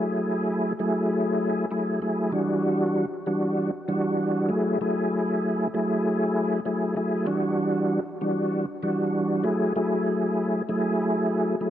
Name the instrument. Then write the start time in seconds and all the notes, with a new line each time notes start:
tonewheel organ
Already playing: F#3 A3 E4 G#4
0.79 F#3 A3 E4 G#4
1.71 F#3 A3 E4 G#4
2.02 F#3 A3 E4 G#4
2.32 E3 G3 D4 F#4
3.26 E3 G3 D4 F#4
3.88 E3 G3 D4 F#4
4.49 F#3 A3 E4 G#4
4.81 F#3 A3 E4 G#4
5.74 F#3 A3 E4 G#4
6.66 F#3 A3 E4 G#4
6.96 F#3 A3 E4 G#4
7.26 E3 G3 D4 F#4
8.21 E3 G3 D4 F#4
8.83 E3 G3 D4 F#4
9.44 F#3 A3 E4 G#4
9.76 F#3 A3 E4 G#4
10.69 F#3 A3 E4 G#4
11.61 F#3 A3 E4 G#4